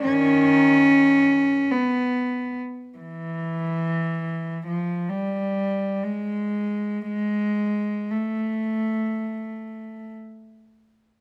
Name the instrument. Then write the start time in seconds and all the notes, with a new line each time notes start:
cello
0.04 D#3 C#4
1.71 B3
2.98 E3
4.67 F3
5.10 G3
6.04 G#3
7.08 G#3
8.11 A3